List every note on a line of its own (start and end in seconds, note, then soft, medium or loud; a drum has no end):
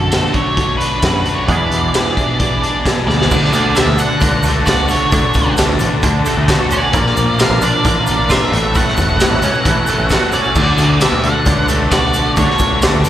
0.00 0.80 D3 medium
0.00 1.47 D3 medium
0.00 1.47 A3 medium
0.00 1.49 F#4 medium
0.00 0.36 A4 medium
0.11 1.03 F#4 medium
0.11 snare loud
0.11 closed hi-hat medium
0.11 tambourine loud
0.33 0.80 D4 medium
0.33 0.77 C#5 medium
0.33 kick medium
0.33 closed hi-hat medium
0.57 1.49 C#5 medium
0.57 kick medium
0.57 closed hi-hat medium
0.77 1.52 D4 medium
0.77 1.35 B4 medium
0.77 closed hi-hat medium
1.02 1.22 F#2 medium
1.02 1.49 F#4 medium
1.02 kick medium
1.02 snare loud
1.02 closed hi-hat medium
1.02 tambourine loud
1.26 1.49 A3 medium
1.26 closed hi-hat medium
1.35 1.46 C#5 medium
1.46 3.29 E2 medium
1.46 1.67 E2 loud
1.46 3.29 B2 medium
1.46 2.63 E3 medium
1.46 3.30 E3 medium
1.46 3.30 G#3 medium
1.46 2.80 D5 medium
1.46 kick medium
1.46 closed hi-hat medium
1.51 3.31 D4 medium
1.51 3.31 E4 loud
1.70 1.89 E2 medium
1.70 closed hi-hat medium
1.94 2.83 G#4 medium
1.94 snare loud
1.94 closed hi-hat medium
1.94 tambourine loud
2.17 2.61 D4 medium
2.17 kick medium
2.17 closed hi-hat medium
2.40 3.31 D5 medium
2.40 kick medium
2.40 closed hi-hat medium
2.62 3.30 D4 medium
2.62 closed hi-hat medium
2.84 3.30 G#4 medium
2.84 kick medium
2.84 snare loud
2.84 closed hi-hat medium
2.84 tambourine loud
3.07 3.26 D2 medium
3.07 3.31 B3 medium
3.07 3.78 D5 medium
3.07 snare medium
3.22 snare medium
3.30 3.50 D2 loud
3.30 4.66 D3 loud
3.30 3.75 D3 medium
3.30 3.75 A3 loud
3.30 3.76 D4 loud
3.30 3.77 F#4 loud
3.30 6.89 A4 medium
3.30 3.77 A4 loud
3.30 6.90 F#5 medium
3.30 8.48 A5 medium
3.30 kick loud
3.30 crash loud
3.30 shaker medium
3.45 snare soft
3.53 3.81 D2 medium
3.53 closed hi-hat medium
3.53 shaker medium
3.75 4.19 D3 medium
3.75 4.67 A3 medium
3.75 4.46 D4 medium
3.75 4.44 F#4 medium
3.75 4.43 A4 medium
3.75 3.99 E5 loud
3.75 snare loud
3.75 closed hi-hat medium
3.75 tambourine loud
3.75 shaker medium
3.87 3.97 D2 loud
3.98 4.08 D2 medium
3.98 4.42 F#5 medium
3.98 closed hi-hat medium
3.98 shaker medium
4.20 4.96 C#2 medium
4.20 5.11 D3 medium
4.20 kick medium
4.20 closed hi-hat loud
4.20 shaker medium
4.43 6.26 A3 medium
4.43 4.67 D4 medium
4.43 4.67 F#4 medium
4.43 4.68 A4 medium
4.43 closed hi-hat medium
4.43 shaker loud
4.66 5.10 D3 medium
4.66 5.12 A3 medium
4.66 4.91 D4 loud
4.66 5.80 F#4 medium
4.66 4.89 F#4 loud
4.66 4.89 A4 loud
4.66 4.89 D5 loud
4.66 kick medium
4.66 snare loud
4.66 closed hi-hat loud
4.66 tambourine loud
4.66 shaker medium
4.88 5.12 D4 medium
4.88 5.12 F#4 medium
4.88 5.13 A4 medium
4.88 5.54 C#5 loud
4.88 closed hi-hat medium
4.88 shaker medium
5.11 5.22 D2 medium
5.11 5.80 D3 loud
5.11 5.56 D3 medium
5.11 5.57 A3 loud
5.11 5.58 D4 loud
5.11 5.58 F#4 loud
5.11 5.59 A4 loud
5.11 kick loud
5.11 closed hi-hat medium
5.11 shaker medium
5.34 5.63 C#2 loud
5.34 kick medium
5.34 closed hi-hat medium
5.34 shaker medium
5.57 6.02 D3 medium
5.57 6.48 A3 medium
5.57 6.26 D4 medium
5.57 6.25 F#4 medium
5.57 6.24 A4 medium
5.57 snare loud
5.57 closed hi-hat loud
5.57 tambourine loud
5.57 shaker medium
5.69 5.78 D2 loud
5.79 5.90 A1 medium
5.79 closed hi-hat medium
5.79 shaker loud
6.02 6.22 D2 medium
6.02 6.93 D3 medium
6.02 kick medium
6.02 closed hi-hat loud
6.02 shaker medium
6.25 6.97 A3 medium
6.25 6.47 D4 medium
6.25 6.48 F#4 medium
6.25 6.49 A4 medium
6.25 closed hi-hat medium
6.25 shaker loud
6.37 6.56 D2 loud
6.47 6.92 D3 medium
6.47 6.92 A3 medium
6.47 6.72 D4 loud
6.47 6.93 F#4 medium
6.47 6.71 F#4 loud
6.47 6.70 A4 loud
6.47 kick medium
6.47 snare loud
6.47 closed hi-hat loud
6.47 tambourine loud
6.47 shaker medium
6.70 6.94 C#4 medium
6.70 6.92 D4 medium
6.70 6.93 F#4 medium
6.70 6.94 A4 medium
6.70 7.42 D5 medium
6.70 closed hi-hat medium
6.70 shaker medium
6.91 7.12 A#1 loud
6.91 8.07 A#2 medium
6.91 7.37 A#3 medium
6.91 7.38 D4 loud
6.91 7.38 F4 loud
6.91 8.49 A#4 medium
6.91 7.39 A#4 loud
6.91 8.50 F5 medium
6.91 kick loud
6.91 closed hi-hat medium
6.91 shaker medium
7.07 snare soft
7.16 7.44 A#1 loud
7.16 closed hi-hat medium
7.16 shaker medium
7.38 7.83 D3 medium
7.38 8.27 A#3 medium
7.38 8.07 D4 medium
7.38 8.06 F4 medium
7.38 8.05 A#4 medium
7.38 7.62 F5 loud
7.38 snare loud
7.38 closed hi-hat loud
7.38 tambourine loud
7.38 shaker medium
7.50 7.59 A#1 loud
7.61 7.70 A#1 medium
7.61 8.52 D4 medium
7.61 7.85 D5 medium
7.61 closed hi-hat medium
7.61 shaker loud
7.84 8.40 A1 loud
7.84 8.52 D3 medium
7.84 8.32 D5 medium
7.84 kick medium
7.84 closed hi-hat loud
7.84 shaker medium
8.06 8.28 D4 medium
8.06 8.29 F4 medium
8.06 8.29 A#4 medium
8.06 closed hi-hat medium
8.06 shaker loud
8.28 8.50 A#3 medium
8.28 8.50 D4 loud
8.28 8.52 F4 medium
8.28 8.51 F4 medium
8.28 8.50 A#4 loud
8.28 8.76 E5 loud
8.28 kick medium
8.28 snare loud
8.28 closed hi-hat loud
8.28 tambourine loud
8.28 shaker medium
8.51 8.89 A1 loud
8.51 8.75 A2 medium
8.51 8.73 A3 medium
8.51 8.74 C#4 medium
8.51 8.75 F#4 medium
8.51 8.76 A4 loud
8.51 13.09 A4 medium
8.51 13.09 F#5 medium
8.51 10.54 C#6 medium
8.51 10.54 E6 medium
8.51 closed hi-hat medium
8.73 9.88 A2 medium
8.73 9.19 A3 loud
8.73 9.19 C#4 loud
8.73 9.20 F#4 loud
8.73 9.21 A4 loud
8.73 10.39 F#5 loud
8.73 kick loud
8.73 closed hi-hat medium
8.73 shaker medium
8.88 snare soft
8.97 9.25 E1 medium
8.97 kick medium
8.97 closed hi-hat medium
8.97 shaker loud
9.08 shaker soft
9.19 9.65 E3 medium
9.19 10.10 A3 medium
9.19 9.89 C#4 medium
9.19 9.88 F#4 medium
9.19 9.87 A4 medium
9.19 snare loud
9.19 closed hi-hat loud
9.19 tambourine loud
9.19 shaker medium
9.31 9.40 A1 loud
9.42 9.51 C#2 medium
9.42 10.33 C#4 medium
9.42 closed hi-hat medium
9.42 shaker loud
9.54 shaker soft
9.65 9.84 A1 medium
9.65 10.55 E3 medium
9.65 kick medium
9.65 closed hi-hat loud
9.65 shaker medium
9.87 11.68 A3 medium
9.87 10.11 C#4 medium
9.87 10.11 F#4 medium
9.87 10.12 A4 medium
9.87 closed hi-hat medium
9.87 shaker medium
9.98 10.17 A1 medium
9.98 shaker soft
10.09 10.55 A3 medium
10.09 10.35 C#4 loud
10.09 11.91 F#4 medium
10.09 10.34 F#4 medium
10.09 10.32 A4 loud
10.09 kick medium
10.09 snare loud
10.09 closed hi-hat loud
10.09 tambourine loud
10.09 shaker medium
10.32 10.58 C#4 medium
10.32 10.56 C#4 medium
10.32 10.56 F#4 medium
10.32 10.57 A4 medium
10.32 10.97 D5 medium
10.32 closed hi-hat medium
10.32 shaker medium
10.44 shaker soft
10.55 10.74 D2 medium
10.55 11.90 D3 loud
10.55 10.99 D3 medium
10.55 11.00 A3 loud
10.55 11.01 D4 loud
10.55 11.02 F#4 loud
10.55 11.03 A4 loud
10.55 13.09 C#6 medium
10.55 kick loud
10.55 crash loud
10.55 shaker medium
10.78 11.06 D2 medium
10.78 closed hi-hat medium
10.78 shaker medium
11.00 11.44 D3 medium
11.00 11.90 A3 medium
11.00 11.70 D4 medium
11.00 11.69 F#4 medium
11.00 11.68 A4 medium
11.00 11.22 E5 medium
11.00 snare loud
11.00 closed hi-hat loud
11.00 tambourine loud
11.00 shaker medium
11.12 11.21 D2 loud
11.24 11.33 D2 loud
11.24 11.66 F#5 medium
11.24 closed hi-hat medium
11.45 12.20 C#2 loud
11.45 12.37 D3 medium
11.45 kick medium
11.45 closed hi-hat loud
11.45 shaker medium
11.68 13.09 A3 medium
11.68 11.91 D4 medium
11.68 11.91 F#4 medium
11.68 11.92 A4 medium
11.68 closed hi-hat medium
11.68 shaker loud
11.90 12.35 D3 medium
11.90 12.36 A3 medium
11.90 12.15 D4 loud
11.90 13.05 F#4 medium
11.90 12.14 F#4 loud
11.90 12.13 A4 loud
11.90 12.33 D5 loud
11.90 kick medium
11.90 snare loud
11.90 closed hi-hat loud
11.90 tambourine loud
11.90 shaker medium
12.14 12.37 D4 medium
12.14 12.37 F#4 medium
12.14 12.38 A4 medium
12.14 closed hi-hat medium
12.14 shaker loud
12.36 12.47 D2 medium
12.36 13.04 D3 loud
12.36 12.81 D3 medium
12.36 12.82 A3 loud
12.36 12.83 D4 loud
12.36 12.82 F#4 loud
12.36 12.84 A4 loud
12.36 12.80 C#5 loud
12.36 kick loud
12.36 closed hi-hat loud
12.36 shaker medium
12.50 snare soft
12.59 12.87 C#2 medium
12.59 kick medium
12.59 closed hi-hat medium
12.59 shaker loud
12.82 13.09 D3 medium
12.82 13.09 A3 medium
12.82 13.09 D4 medium
12.82 13.09 F#4 medium
12.82 13.09 A4 medium
12.82 snare loud
12.82 closed hi-hat loud
12.82 tambourine loud
12.82 shaker medium
12.94 13.03 D2 loud
13.04 13.09 A1 medium
13.04 closed hi-hat medium
13.04 shaker loud